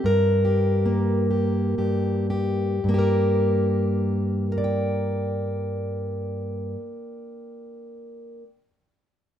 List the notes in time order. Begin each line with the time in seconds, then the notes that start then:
0.04 G2 A#4
0.45 G4
0.86 A#3
1.31 G4
1.78 G2 G4
2.30 G4
2.84 G2
2.89 A#3
2.94 G4
2.99 A#4
4.52 A#4
4.58 D5
4.64 G5